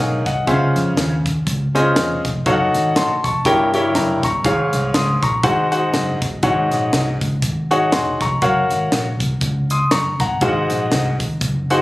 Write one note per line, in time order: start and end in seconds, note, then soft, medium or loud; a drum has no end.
0.00 0.22 B1 loud
0.00 0.22 G#2 medium
0.00 0.23 D#4 medium
0.00 0.23 G#4 medium
0.00 0.23 A#4 medium
0.00 0.23 C#5 medium
0.00 0.25 F5 medium
0.00 0.25 G#5 medium
0.26 0.44 C2 medium
0.26 0.74 D#5 medium
0.26 0.74 F#5 medium
0.26 kick loud
0.26 snare soft
0.26 closed hi-hat medium
0.47 0.72 C#2 loud
0.47 1.22 C#3 medium
0.47 1.11 C#4 medium
0.47 1.11 F4 medium
0.47 1.11 G#4 medium
0.47 1.12 C5 medium
0.47 0.55 E5 medium
0.47 kick loud
0.47 closed hi-hat medium
0.54 1.15 F5 medium
0.76 0.94 F2 loud
0.76 snare soft
0.76 closed hi-hat medium
0.97 1.39 D#2 medium
0.97 snare loud
0.97 closed hi-hat medium
1.26 kick loud
1.26 closed hi-hat medium
1.47 1.89 C#2 loud
1.47 kick loud
1.47 closed hi-hat loud
1.75 2.21 C#4 medium
1.75 2.21 F4 medium
1.75 2.21 G#4 medium
1.75 2.21 C5 medium
1.75 2.21 D#5 medium
1.75 closed hi-hat medium
1.96 2.21 E1 loud
1.96 snare loud
1.96 closed hi-hat loud
2.25 2.43 F1 loud
2.25 kick loud
2.25 snare soft
2.25 closed hi-hat medium
2.46 2.70 F#1 loud
2.46 3.10 D#4 medium
2.46 3.10 F#4 medium
2.46 3.10 A4 medium
2.46 3.10 C#5 medium
2.46 2.53 F5 medium
2.46 kick loud
2.46 closed hi-hat medium
2.52 3.13 F#5 loud
2.74 2.92 G#1 loud
2.74 snare soft
2.74 closed hi-hat medium
2.96 3.20 A1 loud
2.96 3.23 A5 medium
2.96 3.23 C6 medium
2.96 snare loud
2.96 closed hi-hat medium
3.24 3.42 F1 medium
3.24 3.72 A5 medium
3.24 3.71 C#6 medium
3.24 kick loud
3.24 closed hi-hat medium
3.45 3.87 G1 loud
3.45 4.20 G2 medium
3.45 3.68 E4 medium
3.45 3.68 G4 medium
3.45 3.68 A#4 medium
3.45 3.68 C#5 medium
3.45 3.68 G5 loud
3.45 kick loud
3.45 closed hi-hat loud
3.74 4.20 E4 medium
3.74 4.20 G4 medium
3.74 4.20 A#4 medium
3.74 4.20 C#5 medium
3.74 3.95 G5 loud
3.74 closed hi-hat medium
3.95 4.19 F#1 medium
3.95 4.23 G5 medium
3.95 4.22 A#5 medium
3.95 snare loud
3.95 closed hi-hat medium
4.23 4.41 G1 medium
4.23 4.71 A#5 medium
4.23 4.71 C#6 medium
4.23 kick loud
4.23 snare soft
4.23 closed hi-hat medium
4.44 4.69 G#1 loud
4.44 5.19 G#2 medium
4.44 5.09 G#4 medium
4.44 5.09 C#5 medium
4.44 5.09 F5 loud
4.44 kick loud
4.44 closed hi-hat medium
4.73 4.91 C2 loud
4.73 snare soft
4.73 closed hi-hat medium
4.94 5.18 C#2 loud
4.94 5.22 C6 medium
4.94 5.22 D#6 medium
4.94 snare loud
4.94 closed hi-hat medium
5.22 5.41 A#1 medium
5.22 5.70 A#5 medium
5.22 5.70 C#6 medium
5.22 kick loud
5.22 closed hi-hat medium
5.43 5.86 G#1 loud
5.43 6.18 G#2 medium
5.43 5.66 D#4 medium
5.43 5.66 F#4 medium
5.43 5.66 G#4 medium
5.43 5.66 C5 medium
5.43 5.67 F#5 loud
5.43 kick loud
5.43 closed hi-hat loud
5.71 6.18 D#4 medium
5.71 6.18 F#4 medium
5.71 6.18 G#4 medium
5.71 6.18 C5 medium
5.71 6.18 F#5 medium
5.71 closed hi-hat medium
5.93 6.17 F#1 medium
5.93 snare loud
5.93 closed hi-hat medium
6.22 6.40 G1 medium
6.22 kick loud
6.22 snare soft
6.22 closed hi-hat medium
6.43 6.67 G#1 loud
6.43 7.17 G#2 medium
6.43 7.07 D#4 medium
6.43 7.07 F#4 medium
6.43 7.07 G#4 medium
6.43 7.07 C#5 medium
6.43 7.07 F#5 medium
6.43 kick loud
6.43 closed hi-hat medium
6.71 6.89 A#1 medium
6.71 snare soft
6.71 closed hi-hat medium
6.92 7.17 C2 medium
6.92 snare loud
6.92 closed hi-hat medium
7.21 7.39 C#2 loud
7.21 kick loud
7.21 closed hi-hat medium
7.42 7.92 G#1 loud
7.42 kick loud
7.42 closed hi-hat loud
7.71 8.17 D#4 medium
7.71 8.17 F#4 medium
7.71 8.17 G#4 medium
7.71 8.17 C#5 medium
7.71 8.17 F#5 medium
7.71 closed hi-hat medium
7.92 8.16 E1 loud
7.92 8.20 G#5 medium
7.92 8.20 C6 medium
7.92 snare loud
7.92 closed hi-hat medium
8.21 8.39 F1 loud
8.21 8.69 A#5 medium
8.21 8.68 C#6 medium
8.21 kick loud
8.21 snare soft
8.21 closed hi-hat medium
8.42 8.66 F#1 loud
8.42 9.06 F#4 medium
8.42 9.06 A#4 medium
8.42 9.06 C#5 medium
8.42 9.06 F5 medium
8.42 9.06 F#5 medium
8.42 kick loud
8.42 closed hi-hat medium
8.70 8.88 G#1 medium
8.70 snare soft
8.70 closed hi-hat medium
8.92 9.16 A#1 loud
8.92 snare loud
8.92 closed hi-hat medium
9.20 9.38 C2 medium
9.20 kick loud
9.20 closed hi-hat medium
9.41 9.84 C#2 loud
9.41 kick loud
9.41 closed hi-hat loud
9.70 9.91 C6 medium
9.70 9.91 D#6 medium
9.70 closed hi-hat medium
9.91 10.16 F#1 medium
9.91 10.19 A#5 medium
9.91 10.19 C#6 medium
9.91 snare loud
9.91 closed hi-hat medium
10.20 10.38 G1 loud
10.20 10.47 F#5 medium
10.20 10.68 A#5 medium
10.20 kick loud
10.20 snare soft
10.20 closed hi-hat medium
10.41 10.66 G#1 loud
10.41 11.16 G#2 medium
10.41 11.06 D#4 medium
10.41 11.06 F#4 medium
10.41 11.06 G#4 medium
10.41 11.06 C5 medium
10.41 10.49 F5 medium
10.41 kick loud
10.41 closed hi-hat medium
10.48 11.09 F#5 loud
10.70 10.89 A#1 loud
10.70 snare soft
10.70 closed hi-hat medium
10.92 11.16 C2 medium
10.92 snare loud
10.92 closed hi-hat medium
11.20 11.38 G#1 medium
11.20 kick loud
11.20 closed hi-hat medium
11.41 11.82 F#1 loud
11.41 kick loud
11.41 closed hi-hat loud
11.70 11.82 D#4 medium
11.70 11.82 F#4 medium
11.70 11.82 G#4 medium
11.70 11.82 C5 medium
11.70 11.82 F#5 medium
11.70 closed hi-hat medium